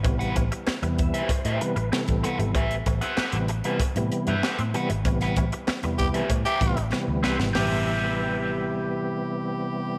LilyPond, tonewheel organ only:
<<
  \new Staff \with { instrumentName = "Tonewheel organ" } { \time 4/4 \key a \dorian \tempo 4 = 96 r4. e''16 c''16 c''8 b'8 a'16 a'8. | r1 | r1 | r1 | }
  \new Staff \with { instrumentName = "Tonewheel organ" } { \clef bass \time 4/4 \key a \dorian <c e g b>8. r8 <c e g b>8. r8 <c e g b>16 r16 <c e g b>4 | r4 r16 <c e g b>16 r16 <c e g b>16 r16 <c e g b>8. r8 <c e g b>16 r16 | <c e g b>8. r8 <c e g b>8. r8 <c e g b>16 r16 <c e g b>4 | <c e g b>1 | }
>>